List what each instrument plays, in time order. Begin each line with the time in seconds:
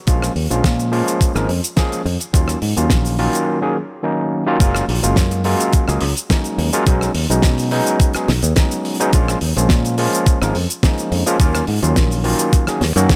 0.07 fingered electric bass A#1, tine electric piano F3 G#3 A#3 C#4 F4, kick, closed hi-hat, cabasa
0.22 cross-stick, cabasa
0.36 fingered electric bass D#2, open hi-hat
0.50 fingered electric bass A#1, tine electric piano F3 G#3 A#3 C#4 F4, closed hi-hat, cabasa
0.64 fingered electric bass A#2, kick, snare, closed hi-hat, cabasa
0.79 closed hi-hat, cabasa
0.91 tine electric piano F3 G#3 A#3 C#4 F4, open hi-hat
1.08 closed hi-hat, cabasa
1.21 muted fingered electric bass stroke, kick, closed hi-hat, cabasa
1.35 fingered electric bass G#1, tine electric piano F3 G#3 A#3 C#4 A#4, cross-stick, cabasa
1.49 fingered electric bass F2, open hi-hat
1.64 closed hi-hat, cabasa
1.76 tine electric piano F3 G#3 A#3 C#4 G#4, kick, snare, closed hi-hat, cabasa
1.92 closed hi-hat, cabasa
2.05 fingered electric bass F2, open hi-hat
2.20 closed hi-hat, cabasa
2.33 fingered electric bass D#2, tine electric piano D#3 F#3 A#3 C#4 F4, kick, closed hi-hat, cabasa
2.48 cross-stick, closed hi-hat, cabasa
2.62 fingered electric bass G#2, open hi-hat
2.76 fingered electric bass D#2, tine electric piano D#3 F#3 A#3 C#4 F4, closed hi-hat, cabasa
2.90 fingered electric bass A#1, kick, snare, closed hi-hat, cabasa
3.05 open hi-hat, cabasa
3.18 tine electric piano D#3 F#3 A#3 C#4 F4, open hi-hat
3.33 closed hi-hat, cabasa
3.62 tine electric piano D#3 F#3 A#3 C#4 G#4
4.03 tine electric piano D#3 F#3 A#3 C#4 D#4
4.47 tine electric piano D#3 F#3 A#3 C#4 F4
4.60 fingered electric bass F#1, tine electric piano F#3 G#3 A#3 C#4 F4, kick, closed hi-hat, cabasa
4.75 cross-stick, cabasa
4.88 fingered electric bass A#1, open hi-hat
5.03 fingered electric bass F#1, tine electric piano F#3 G#3 A#3 C#4 F4, closed hi-hat, cabasa
5.16 fingered electric bass F#2, kick, snare, closed hi-hat, cabasa
5.31 closed hi-hat, cabasa
5.44 tine electric piano F#3 G#3 A#3 C#4 F4, open hi-hat
5.60 closed hi-hat, cabasa
5.73 muted fingered electric bass stroke, kick, closed hi-hat, cabasa
5.88 fingered electric bass C#2, tine electric piano F#3 G#3 A#3 C#4 G#4, cross-stick, cabasa
6.01 fingered electric bass C#2, open hi-hat
6.17 closed hi-hat, cabasa
6.30 tine electric piano F#3 G#3 A#3 C#4 D#4, kick, snare, closed hi-hat, cabasa
6.44 closed hi-hat, cabasa
6.58 fingered electric bass D#2, open hi-hat
6.73 tine electric piano F#3 G#3 A#3 C#4 F4, closed hi-hat, cabasa
6.86 fingered electric bass B1, tine electric piano F#3 G#3 C#4 D#4, kick, closed hi-hat, cabasa
7.01 cross-stick, cabasa
7.14 fingered electric bass D#2, open hi-hat
7.29 fingered electric bass B1, tine electric piano F#3 G#3 B3 C#4 D#4, closed hi-hat, cabasa
7.42 fingered electric bass B2, kick, snare, closed hi-hat, cabasa
7.58 open hi-hat, cabasa
7.71 tine electric piano F#3 G#3 B3 C#4 D#4, open hi-hat
7.86 closed hi-hat, cabasa
8.00 kick, closed hi-hat, cabasa
8.13 tine electric piano F#3 G#3 B3 C#4 G#4, muted fingered electric bass stroke, cross-stick, closed hi-hat, cabasa
8.28 fingered electric bass B1, snare, open hi-hat
8.42 fingered electric bass D#2, closed hi-hat, cabasa
8.56 tine electric piano F#3 G#3 B3 C#4 D#4, kick, snare, closed hi-hat, cabasa
8.71 closed hi-hat, cabasa
8.85 open hi-hat
9.00 tine electric piano F#3 G#3 B3 C#4 D#4, closed hi-hat, cabasa
9.13 fingered electric bass A#1, tine electric piano F4, kick, closed hi-hat, cabasa
9.28 cross-stick, cabasa
9.41 fingered electric bass D#2, open hi-hat
9.56 fingered electric bass A#1, tine electric piano F3 G#3 A#3 C#4 F4, closed hi-hat, cabasa
9.69 fingered electric bass A#2, kick, snare, closed hi-hat, cabasa
9.85 closed hi-hat, cabasa
9.98 tine electric piano F3 G#3 A#3 C#4 F4, open hi-hat
10.13 closed hi-hat, cabasa
10.26 muted fingered electric bass stroke, kick, closed hi-hat, cabasa
10.41 fingered electric bass G#1, tine electric piano F3 G#3 A#3 C#4 A#4, cross-stick, cabasa
10.55 fingered electric bass F2, open hi-hat
10.70 closed hi-hat, cabasa
10.83 tine electric piano F3 G#3 A#3 C#4 D#4, kick, snare, closed hi-hat, cabasa
10.98 closed hi-hat, cabasa
11.12 fingered electric bass F2, open hi-hat
11.26 tine electric piano F3 G#3 A#3 C#4 F4, closed hi-hat, cabasa
11.39 fingered electric bass D#2, tine electric piano D#3 F#3 A#3 C#4 F4, kick, closed hi-hat, cabasa
11.55 cross-stick, cabasa
11.67 fingered electric bass G#2, open hi-hat
11.82 fingered electric bass D#2, tine electric piano D#3 F#3 A#3 C#4 F4, closed hi-hat, cabasa
11.96 fingered electric bass A#1, kick, snare, closed hi-hat, cabasa
12.11 open hi-hat, cabasa
12.24 tine electric piano D#3 F#3 A#3 C#4 F4, open hi-hat
12.39 closed hi-hat, cabasa
12.53 kick, closed hi-hat, cabasa
12.67 tine electric piano D#3 F#3 A#3 C#4 G#4, muted fingered electric bass stroke, cross-stick, closed hi-hat, cabasa
12.81 fingered electric bass D#2, snare, open hi-hat
12.96 fingered electric bass F#2, tine electric piano D#3 F#3 A#3 C#4 F#4, closed hi-hat, cabasa
13.09 kick, snare, closed hi-hat, cabasa